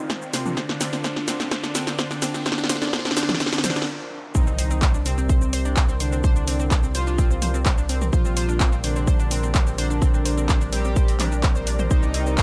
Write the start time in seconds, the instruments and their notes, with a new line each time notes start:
Already playing: analog polysynth D#3 D#4, analog synth pad C4 F4 A#4 D5, riser
0.10 synth arpeggio sound C5, kick, snare, shaker
0.22 synth arpeggio sound C4, shaker
0.33 analog polysynth C3 C4, synth arpeggio sound C5, snare, open hi-hat, shaker
0.46 synth arpeggio sound D4, mid tom, shaker
0.57 analog polysynth D3 D4, synth arpeggio sound C5, kick, snare, shaker
0.69 synth arpeggio sound D4, snare
0.81 synth arpeggio sound C4, snare, open hi-hat, shaker
0.93 synth arpeggio sound C4, snare, shaker
1.04 analog polysynth D3 D4, synth arpeggio sound C5, kick, snare, shaker
1.16 synth arpeggio sound D4, snare
1.28 synth arpeggio sound C4, snare, open hi-hat, shaker
1.40 synth arpeggio sound C4, snare, shaker
1.51 analog polysynth D3 D4, synth arpeggio sound C5, kick, snare, shaker
1.64 synth arpeggio sound D4, snare, shaker
1.75 synth arpeggio sound C4, snare, open hi-hat, shaker
1.87 synth arpeggio sound C4, snare, shaker
1.98 analog polysynth D3 D4, synth arpeggio sound C5, kick, snare, shaker
2.11 synth arpeggio sound D4, snare, shaker
2.22 synth arpeggio sound C4, snare, open hi-hat, shaker
2.34 synth arpeggio sound C4, snare, shaker
2.46 analog polysynth D3 D4, synth arpeggio sound C5, kick, snare, noise sweep, shaker
2.52 snare
2.58 synth arpeggio sound D4, snare, shaker
2.64 snare
2.69 analog polysynth D3 D4, synth arpeggio sound C5, snare, open hi-hat, shaker
2.76 snare
2.82 synth arpeggio sound D4, snare, shaker
2.87 snare
2.93 analog polysynth D3 D4, synth arpeggio sound C5, kick, snare, shaker
2.99 snare
3.05 synth arpeggio sound D4, snare, shaker
3.11 snare
3.17 analog polysynth D3 D4, synth arpeggio sound C5, snare, open hi-hat, shaker
3.23 snare
3.29 synth arpeggio sound D4, snare, mid tom, shaker
3.35 snare
3.40 analog polysynth D3 D4, synth arpeggio sound C5, kick, snare, shaker
3.46 snare
3.52 synth arpeggio sound D4, snare, open hi-hat, shaker
3.58 snare
3.64 analog polysynth D3 D4, synth arpeggio sound C5, snare, open hi-hat, mid tom, shaker
3.70 snare
3.76 synth arpeggio sound D4, snare, shaker
3.82 snare
4.35 analog synth bass C2, synth drone C3 G3, analog polysynth D#3 D#4, synth arpeggio sound C4, kick, impact, shaker
4.47 synth arpeggio sound C4, shaker
4.54 analog synth pad A#4
4.58 synth arpeggio sound C5, open hi-hat, shaker
4.71 synth arpeggio sound C4, analog synth pad D5, shaker
4.82 synth arpeggio sound C5, kick, clap, shaker
4.94 synth arpeggio sound D4, shaker
5.06 analog polysynth C3 C4, synth arpeggio sound C4, open hi-hat, shaker
5.18 synth arpeggio sound C4, shaker
5.29 synth arpeggio sound C5, kick, shaker
5.42 synth arpeggio sound C4, shaker
5.53 synth arpeggio sound C5, open hi-hat, shaker
5.65 synth arpeggio sound D4, shaker
5.77 synth arpeggio sound C4, kick, clap, shaker
5.89 synth arpeggio sound C4, shaker
6.00 analog polysynth D3 D4, synth arpeggio sound C5, open hi-hat, shaker
6.12 synth arpeggio sound C4, shaker
6.24 synth arpeggio sound C5, kick, shaker
6.36 synth arpeggio sound D4, shaker
6.47 synth arpeggio sound C4, open hi-hat, shaker
6.60 synth arpeggio sound C4, shaker
6.71 synth arpeggio sound C5, kick, clap, shaker
6.83 synth arpeggio sound C4, shaker
6.95 analog polysynth F3 F4, synth arpeggio sound C5, open hi-hat, shaker
7.07 synth arpeggio sound D4, shaker
7.18 synth arpeggio sound C4, kick, shaker
7.31 synth arpeggio sound C4, shaker
7.42 synth arpeggio sound C5, open hi-hat, mid tom, shaker
7.54 synth arpeggio sound C4, shaker
7.66 synth arpeggio sound C5, kick, clap, shaker
7.78 synth arpeggio sound D4, shaker
7.89 synth arpeggio sound C4, open hi-hat, shaker
8.01 synth arpeggio sound C4, mid tom, shaker
8.13 analog synth bass A#1, analog polysynth F3 F4, synth arpeggio sound C5, kick, shaker
8.25 synth arpeggio sound C4, shaker
8.37 synth arpeggio sound C5, open hi-hat, shaker
8.49 synth arpeggio sound D4, shaker
8.60 synth arpeggio sound C4, kick, clap, shaker
8.72 synth arpeggio sound C4, shaker
8.84 analog polysynth D3 D4, synth arpeggio sound C5, open hi-hat, shaker
8.96 synth arpeggio sound C4, shaker
9.07 synth arpeggio sound C5, kick, shaker
9.19 synth arpeggio sound D4, shaker
9.31 synth arpeggio sound C4, open hi-hat, shaker
9.43 synth arpeggio sound C4, shaker
9.54 synth arpeggio sound C5, kick, clap, shaker
9.67 synth arpeggio sound C4, shaker
9.78 analog polysynth D3 D4, synth arpeggio sound C5, open hi-hat, shaker
9.90 synth arpeggio sound D4, shaker
10.02 synth arpeggio sound C4, kick, shaker
10.14 synth arpeggio sound C4, shaker
10.25 synth arpeggio sound C5, open hi-hat, shaker
10.37 synth arpeggio sound C4, shaker
10.49 synth arpeggio sound C5, kick, clap, shaker
10.61 synth arpeggio sound D4, shaker
10.73 analog polysynth G3 G4, synth arpeggio sound C4, open hi-hat, shaker
10.85 synth arpeggio sound C4, shaker
10.96 synth arpeggio sound C5, kick, shaker
11.08 synth arpeggio sound C4, open hi-hat, shaker
11.20 synth arpeggio sound D4, clap, open hi-hat, mid tom, shaker
11.32 synth arpeggio sound D4, shaker
11.43 synth arpeggio sound C4, kick, clap, shaker
11.55 synth arpeggio sound C5, shaker
11.67 synth arpeggio sound D4, open hi-hat, shaker
11.79 synth arpeggio sound C5, mid tom, shaker
11.91 analog synth bass C2, analog polysynth D#3 D#4, synth arpeggio sound C5, kick, shaker
12.03 synth arpeggio sound D4, shaker
12.14 synth arpeggio sound C4, open hi-hat, shaker
12.26 synth arpeggio sound C4, shaker
12.38 synth arpeggio sound C5, kick, clap, shaker